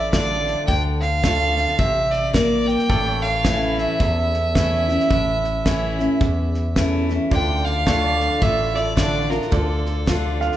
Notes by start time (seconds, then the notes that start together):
Already playing: A1 A2 A4 D5
0.12 D3 A3 D4 F4 D5, kick, snare, hi-hat pedal
0.47 snare
0.67 D2 D3 G5, kick, snare
1.01 F5, snare
1.23 D3 A3 D4 F4, kick, snare, hi-hat pedal
1.57 snare
1.68 snare
1.78 A1 C3 E5, kick, snare
2.11 D5, snare
2.33 A#3 D5, kick, snare, hi-hat pedal
2.67 G5, snare
2.79 snare
2.90 A1 A2 A4 D5, kick, snare
3.11 C#5
3.23 F5, snare
3.45 E3 A3 C#4 E4, kick, snare, hi-hat pedal
3.78 E5, snare
4.00 E2, kick, snare
4.34 snare
4.55 E3 A3 C#4 E4, kick, snare, hi-hat pedal
4.88 C#4 E4, snare
5.00 snare
5.10 A1 A2, kick, snare
5.44 snare
5.65 E3 A3 C#4 E4, kick, snare, hi-hat pedal
5.99 C#4 E4, snare
6.20 E2, kick, snare
6.54 snare
6.76 E3 A3 C#4 E4, kick, snare, hi-hat pedal
7.09 C#4 E4, snare
7.30 D2 D3 F4 A4 D5 G5, kick, snare
7.65 F5, snare
7.86 D3 A3 D4 F4 A4 C#5 D5, kick, snare, hi-hat pedal
8.07 D5
8.20 snare
8.40 A1 A2 F4 A4 D5 E5, kick, snare
8.74 F4 A4 D5, snare
8.96 D3 A3 D4 F4 A4 D5, kick, snare, hi-hat pedal
9.30 D4 F4 A#4, snare
9.42 snare
9.51 D2 D3 F4 A4 D5, kick, snare
9.86 snare
10.06 D3 A3 D4 F4 A4 D5, kick, snare, hi-hat pedal
10.41 F5, snare
10.52 snare